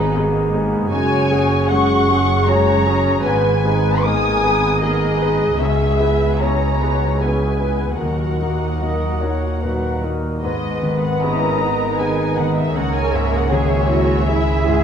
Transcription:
Already playing: double bass section G#1, cello section G#2, grand piano G#2 B3 D#4 G#4 D#5, french horn section B2 G#4, viola section G#3 B3, violin section D#4 B4
0.14 viola section A#3 D#4, grand piano B3 D#4 G#4
0.53 viola section A#3 B3, grand piano D#4 G#4
0.91 double bass section F#1, grand piano F#2, cello section F#2, viola section G#3 F#4, french horn section C#4 G#4, violin section C#5 G#5
1.31 viola section C#4 G#4, grand piano F#4 G#4
1.70 viola section G#3 F#4, grand piano C#4 F#4 G#4, violin section F#5 C#6
2.10 viola section C#4 G#4, grand piano F#4 G#4
2.47 viola section G#3 F#4, grand piano C#4 F#4 G#4, violin section C#5 A#5
2.86 viola section C#4 G#4, grand piano F#4 G#4
3.24 double bass section G#1, cello section G#2, grand piano G#2, french horn section B2 G#4, viola section B3 B4, violin section B4 G#5
3.63 viola section B3 B4, grand piano D#4 G#4
4.03 viola section A#3 A#4, grand piano B3 D#4 G#4, violin section G#5 D#6
4.42 viola section B3 B4, grand piano D#4 G#4
4.82 viola section A#3 A#4, grand piano B3 D#4 G#4, violin section G#4 D#5
5.20 viola section B3 B4, grand piano D#4 G#4
5.58 cello section C#2, double bass section C#2, grand piano C#2, viola section C#4 G#4, violin section G#4 E5, french horn section G#4
5.98 viola section B3 B4, grand piano E4 G#4
6.39 grand piano B3 E4 G#4, viola section C#4 G#4, violin section C#5 A#5
6.78 viola section B3 B4, grand piano E4 G#4
7.18 grand piano B3 E4 G#4, viola section C#4 G#4, violin section B4 G#5
7.58 viola section B3 B4, grand piano E4 G#4
7.98 cello section D#2, double bass section D#2, grand piano D#2, french horn section A#2 F#4, viola section F#3 F#4, violin section A#4 F#5
8.39 viola section A#3 D#4, grand piano D#4 F#4
8.80 viola section F#3 F#4, grand piano A#3 D#4 F#4, clarinet D#5
9.21 viola section A#3 D#4, grand piano D#4 F#4, clarinet C#5
9.62 grand piano A#2 D#4 F#4, viola section F#3 F#4, clarinet B4
10.02 viola section A#3 D#4, grand piano D#4 F#4, clarinet A#4
10.42 double bass section G#1, grand piano G#2, viola section G#3 B3, violin section B4 D#5
10.83 grand piano D#3
11.02 violin section F#5
11.20 grand piano B3 G#4 D#5, viola section C#4 D#5, cello section E4, violin section A#4 A#5
11.59 viola section B3, grand piano B3, cello section D#4
11.99 grand piano B3 D#4 G#4, viola section D#4, violin section G#5
12.37 grand piano D#3, violin section F#5
12.57 violin section E5
12.74 double bass section C#2, grand piano C#2, viola section A#3, violin section G#4 C#5 F#5, cello section A#4
12.95 violin section G#5
13.13 grand piano G#2, violin section E5
13.35 violin section F#5
13.50 grand piano D#3 C#4 G#4, viola section F#4, cello section G#4, violin section C#5 E5
13.89 grand piano C#4, viola section E4, cello section F#4
14.26 viola section G#3 E4, grand piano C#4 E4 G#4, cello section E4, violin section G#4 E5
14.66 grand piano G#2, viola section G#3, cello section G#4

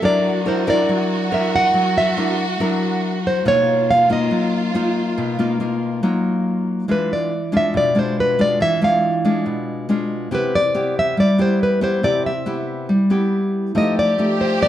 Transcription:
0.02 nylon-string guitar F#3 D4 E4 A#4 D5, violin section F#4
0.45 nylon-string guitar D4 E4 A#4 C5
0.67 nylon-string guitar D4 E4 A#4 D5
0.89 nylon-string guitar F#3
1.31 nylon-string guitar D4 E4 A#4 E5
1.56 nylon-string guitar F#5
1.74 nylon-string guitar F#3
1.98 nylon-string guitar E5
2.17 nylon-string guitar D4 E4 A#4
2.60 nylon-string guitar F#3 D4 E4 A#4
3.27 nylon-string guitar C5
3.45 nylon-string guitar B2 A#3 D#4 F4 C#5, violin section F4
3.91 nylon-string guitar F5
4.10 nylon-string guitar A#3 D#4 F4 D#5
4.31 nylon-string guitar F#3
4.74 nylon-string guitar A#3 D#4 F4
5.18 nylon-string guitar B2
5.39 nylon-string guitar A#3 D#4 F4
5.60 nylon-string guitar A#3 D#4 F4
6.03 nylon-string guitar F#3 A#3 D#4 F4
6.88 nylon-string guitar E3 G#3 D4 F4 B4
7.13 nylon-string guitar D5
7.52 nylon-string guitar G#3 D4 F4
7.57 nylon-string guitar E5
7.74 nylon-string guitar B2 D5
7.95 nylon-string guitar G#3 D4 F4 C5
8.20 nylon-string guitar B4
8.39 nylon-string guitar G#3 D4 F4 D5
8.60 nylon-string guitar E3 E5
8.81 nylon-string guitar G#3 D4 F4 F5
9.25 nylon-string guitar G#3 D4 F4
9.46 nylon-string guitar B2
9.89 nylon-string guitar G#3 D4 F4
10.31 nylon-string guitar C3 B3 E4 G4 B4
10.55 nylon-string guitar D5
10.75 nylon-string guitar B3 E4 G4
10.99 nylon-string guitar E5
11.17 nylon-string guitar G3 D5
11.38 nylon-string guitar B3 E4 G4 C5
11.63 nylon-string guitar B4
11.81 nylon-string guitar B3 E4 G4 C5
12.03 nylon-string guitar C3 B3 E4 G4 D5
12.26 nylon-string guitar E5
12.46 nylon-string guitar B3 E4 G4
12.89 nylon-string guitar G3
13.10 nylon-string guitar B3 E4 G4
13.75 nylon-string guitar F3 A3 D#4 G4 D#5, violin section G4
13.99 nylon-string guitar D5
14.18 nylon-string guitar A3 D#4 G4
14.41 nylon-string guitar C5
14.61 nylon-string guitar C3 D5

